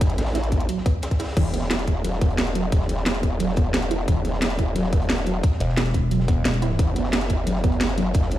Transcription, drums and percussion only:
0.01 kick, closed hi-hat
0.09 snare, closed hi-hat
0.18 snare, closed hi-hat, open hi-hat
0.26 snare, open hi-hat
0.35 snare, closed hi-hat
0.44 snare, closed hi-hat
0.52 kick, closed hi-hat
0.60 closed hi-hat
0.69 closed hi-hat
0.78 snare
0.86 kick, closed hi-hat
1.02 snare, closed hi-hat
1.11 kick, snare, closed hi-hat
1.19 snare, closed hi-hat, open hi-hat
1.24 snare, open hi-hat
1.28 snare, open hi-hat
1.33 kick, snare, open hi-hat
1.37 closed hi-hat, crash
1.54 closed hi-hat
1.62 snare
1.70 snare, closed hi-hat, open hi-hat
1.79 snare, closed hi-hat
1.87 kick, closed hi-hat
2.05 closed hi-hat
2.13 snare
2.21 kick, closed hi-hat
2.30 closed hi-hat
2.38 snare, closed hi-hat
2.47 snare, closed hi-hat
2.55 closed hi-hat
2.72 kick, closed hi-hat
2.82 snare
2.89 closed hi-hat
2.97 snare
3.06 snare, closed hi-hat
3.15 snare, closed hi-hat
3.23 kick, closed hi-hat
3.40 closed hi-hat
3.49 snare
3.56 kick, closed hi-hat
3.74 snare, closed hi-hat
3.82 snare, closed hi-hat
3.91 closed hi-hat
4.00 snare
4.08 kick, closed hi-hat
4.25 closed hi-hat
4.34 snare
4.41 snare, closed hi-hat, open hi-hat
4.50 snare, closed hi-hat
4.58 kick, closed hi-hat
4.75 closed hi-hat
4.84 snare
4.93 kick, closed hi-hat
5.02 closed hi-hat
5.09 snare, closed hi-hat
5.18 snare, closed hi-hat
5.26 closed hi-hat
5.43 kick, closed hi-hat
5.52 snare
5.60 closed hi-hat
5.69 snare
5.77 snare, closed hi-hat
5.86 snare, closed hi-hat
5.94 kick, closed hi-hat
6.11 closed hi-hat
6.20 snare
6.28 kick, closed hi-hat
6.45 snare, closed hi-hat
6.53 snare, closed hi-hat
6.62 closed hi-hat
6.70 snare
6.79 kick, closed hi-hat
6.96 closed hi-hat
7.04 snare
7.13 snare, closed hi-hat, open hi-hat
7.21 snare, closed hi-hat
7.29 kick, closed hi-hat
7.47 closed hi-hat
7.55 snare
7.64 kick, closed hi-hat
7.72 closed hi-hat
7.81 snare, closed hi-hat
7.89 snare, closed hi-hat
7.98 closed hi-hat
8.14 kick, closed hi-hat
8.23 snare
8.31 closed hi-hat

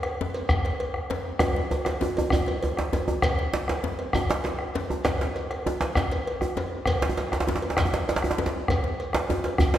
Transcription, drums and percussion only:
0.03 bombo rim, cowbell
0.21 djembe slap, djembe tone
0.34 cowbell, djembe slap, shekere
0.49 bombo rim, bombo low, djembe slap, djembe bass, shekere
0.65 bombo rim, cowbell, djembe slap
0.80 cowbell, djembe slap
0.94 bombo rim
1.10 bombo rim, cowbell, djembe slap, djembe tone
1.25 bombo rim, djembe slap
1.39 bombo rim, bombo low, cowbell, djembe tone, djembe bass, shekere
1.56 djembe slap
1.70 bombo rim, cowbell, djembe slap, djembe tone, shekere
1.85 bombo rim, cowbell, djembe slap
2.01 djembe slap, djembe tone
2.17 cowbell, djembe tone
2.30 bombo rim, bombo low, djembe tone, djembe bass, shekere
2.46 cowbell, djembe slap, shekere
2.62 cowbell, djembe tone
2.77 bombo rim, djembe slap
2.93 bombo rim, cowbell, djembe slap, djembe tone, shekere
3.08 djembe slap, djembe tone
3.22 bombo rim, bombo low, cowbell, djembe bass, shekere
3.39 djembe slap
3.52 bombo rim, djembe slap, shekere
3.68 bombo rim, cowbell, djembe slap
3.84 djembe slap, djembe tone
3.99 cowbell
4.13 bombo rim, bombo low, djembe tone, djembe bass, shekere
4.30 cowbell, djembe slap
4.44 cowbell, djembe slap
4.59 bombo rim
4.74 bombo rim, cowbell, djembe slap, djembe tone, shekere
4.90 djembe slap, djembe tone
5.04 bombo rim, bombo low, cowbell, djembe slap, djembe bass, shekere
5.21 djembe slap
5.36 bombo rim, cowbell, djembe slap, shekere
5.51 bombo rim, cowbell
5.66 djembe slap, djembe tone
5.81 cowbell, djembe slap
5.95 bombo rim, bombo low, djembe slap, djembe bass, shekere
6.11 cowbell, djembe slap, shekere
6.27 cowbell
6.41 bombo rim, djembe tone
6.56 bombo rim, cowbell, djembe slap, djembe tone, shekere
6.73 djembe slap
6.86 bombo rim, bombo low, cowbell, djembe slap, djembe bass, shekere
7.01 bombo rim, djembe slap
7.09 djembe tone
7.16 bombo rim, cowbell, djembe slap, shekere
7.32 bombo rim, cowbell, djembe slap, shekere
7.40 djembe slap
7.47 djembe slap, djembe tone
7.56 djembe slap
7.62 cowbell
7.70 djembe slap
7.77 bombo rim, bombo low, djembe slap, djembe bass, shekere
7.85 djembe tone
7.93 cowbell, djembe slap
8.09 cowbell, djembe slap, shekere
8.16 djembe slap
8.22 bombo rim, djembe tone
8.31 djembe slap
8.38 cowbell, djembe slap, djembe tone
8.46 djembe slap
8.55 djembe slap
8.68 bombo rim, bombo low, cowbell, djembe bass, shekere
8.84 djembe slap
8.99 bombo rim, cowbell, djembe slap, shekere
9.13 bombo rim, cowbell, djembe slap
9.30 djembe slap, djembe tone
9.44 cowbell, djembe slap
9.58 bombo rim, bombo low, djembe bass, shekere
9.74 djembe slap

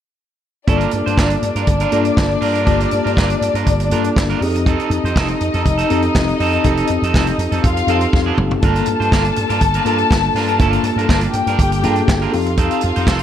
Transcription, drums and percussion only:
0.68 kick, closed hi-hat
0.81 closed hi-hat
0.91 closed hi-hat
1.07 closed hi-hat
1.18 kick, snare, clap
1.30 closed hi-hat
1.43 closed hi-hat
1.56 closed hi-hat
1.67 kick, closed hi-hat
1.80 closed hi-hat
1.92 closed hi-hat
2.05 closed hi-hat
2.17 kick, snare, clap
2.31 closed hi-hat
2.42 open hi-hat
2.55 closed hi-hat
2.66 kick, closed hi-hat
2.80 closed hi-hat
2.91 closed hi-hat
3.06 closed hi-hat
3.17 kick, snare, clap
3.30 closed hi-hat
3.42 closed hi-hat
3.55 closed hi-hat
3.66 kick, closed hi-hat
3.80 closed hi-hat
3.91 closed hi-hat
4.04 closed hi-hat
4.16 kick, snare, clap
4.30 closed hi-hat
4.42 open hi-hat
4.55 closed hi-hat
4.66 kick, closed hi-hat
4.79 closed hi-hat
4.91 closed hi-hat
5.06 closed hi-hat
5.16 kick, snare, clap
5.28 closed hi-hat
5.41 closed hi-hat
5.54 closed hi-hat
5.65 kick, closed hi-hat
5.78 closed hi-hat
5.90 closed hi-hat
6.02 closed hi-hat
6.15 kick, snare, clap
6.28 closed hi-hat
6.40 open hi-hat
6.53 closed hi-hat
6.64 kick, closed hi-hat
6.77 closed hi-hat
6.87 closed hi-hat
7.03 closed hi-hat
7.14 kick, snare, clap
7.27 closed hi-hat
7.39 closed hi-hat
7.52 closed hi-hat
7.64 kick, closed hi-hat
7.77 closed hi-hat
7.88 closed hi-hat
8.01 closed hi-hat
8.13 kick, snare
8.38 mid tom
8.51 floor tom
8.62 kick, closed hi-hat
8.76 closed hi-hat
8.86 closed hi-hat
9.02 closed hi-hat
9.12 kick, snare, clap
9.25 closed hi-hat
9.36 closed hi-hat
9.50 closed hi-hat
9.61 kick, closed hi-hat
9.74 closed hi-hat
9.86 closed hi-hat
9.98 closed hi-hat
10.11 kick, snare, clap
10.24 closed hi-hat
10.36 snare, open hi-hat
10.48 closed hi-hat
10.59 kick, closed hi-hat
10.73 closed hi-hat
10.84 closed hi-hat
10.99 closed hi-hat
11.09 kick, snare, clap
11.21 closed hi-hat
11.33 closed hi-hat
11.47 closed hi-hat
11.59 kick, closed hi-hat
11.72 closed hi-hat
11.83 closed hi-hat
11.96 closed hi-hat
12.08 kick, snare, clap
12.22 closed hi-hat
12.33 open hi-hat
12.46 closed hi-hat
12.57 kick, closed hi-hat
12.71 closed hi-hat
12.81 closed hi-hat
12.96 closed hi-hat
13.07 kick, snare, clap
13.19 closed hi-hat

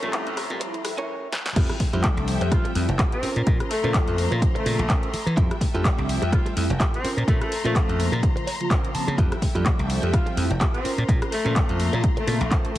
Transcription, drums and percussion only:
0.03 closed hi-hat
0.13 clap, closed hi-hat
0.27 closed hi-hat
0.37 cross-stick, open hi-hat
0.50 closed hi-hat
0.61 closed hi-hat
0.74 closed hi-hat
0.85 cross-stick, open hi-hat
0.98 closed hi-hat
1.32 snare
1.46 snare
1.56 kick, closed hi-hat, crash
1.69 cross-stick, closed hi-hat
1.80 kick, open hi-hat
1.93 closed hi-hat
2.04 kick, clap, closed hi-hat
2.18 closed hi-hat
2.28 open hi-hat
2.41 closed hi-hat
2.52 kick, cross-stick, closed hi-hat
2.65 closed hi-hat
2.75 open hi-hat
2.89 closed hi-hat
2.99 kick, clap, closed hi-hat
3.12 closed hi-hat
3.23 open hi-hat
3.36 closed hi-hat
3.47 kick, closed hi-hat
3.60 cross-stick, closed hi-hat
3.71 open hi-hat
3.84 closed hi-hat
3.94 kick, clap, closed hi-hat
4.08 closed hi-hat
4.18 open hi-hat
4.32 closed hi-hat
4.42 kick, closed hi-hat
4.56 closed hi-hat
4.66 open hi-hat
4.79 closed hi-hat
4.90 kick, clap, closed hi-hat
5.03 closed hi-hat
5.14 open hi-hat
5.27 closed hi-hat
5.37 kick, closed hi-hat
5.51 cross-stick, closed hi-hat
5.61 kick, open hi-hat
5.75 closed hi-hat
5.85 kick, clap, closed hi-hat
5.99 closed hi-hat
6.09 open hi-hat
6.22 closed hi-hat
6.32 kick, cross-stick, closed hi-hat
6.46 closed hi-hat
6.57 open hi-hat
6.70 closed hi-hat
6.80 kick, clap, closed hi-hat
6.94 closed hi-hat
7.05 open hi-hat
7.18 closed hi-hat
7.28 kick, closed hi-hat
7.42 cross-stick, closed hi-hat
7.52 open hi-hat
7.65 closed hi-hat
7.75 kick, clap, closed hi-hat
7.89 closed hi-hat
8.00 open hi-hat
8.13 closed hi-hat
8.23 kick, closed hi-hat
8.37 closed hi-hat
8.47 open hi-hat
8.61 closed hi-hat
8.71 kick, clap, closed hi-hat
8.85 closed hi-hat
8.95 open hi-hat
9.08 closed hi-hat
9.18 kick, closed hi-hat
9.32 cross-stick, closed hi-hat
9.42 kick, open hi-hat
9.55 closed hi-hat
9.66 kick, clap, closed hi-hat
9.79 closed hi-hat
9.90 open hi-hat
10.03 closed hi-hat
10.13 kick, cross-stick, closed hi-hat
10.27 closed hi-hat
10.37 open hi-hat
10.51 closed hi-hat
10.61 kick, clap, closed hi-hat
10.74 closed hi-hat
10.85 open hi-hat
10.98 closed hi-hat
11.09 kick, closed hi-hat
11.22 cross-stick, closed hi-hat
11.32 open hi-hat
11.46 closed hi-hat
11.56 kick, clap, closed hi-hat
11.69 closed hi-hat
11.80 open hi-hat
11.93 closed hi-hat
12.04 kick, closed hi-hat
12.17 closed hi-hat
12.28 open hi-hat
12.41 closed hi-hat
12.51 kick, clap, closed hi-hat
12.65 closed hi-hat

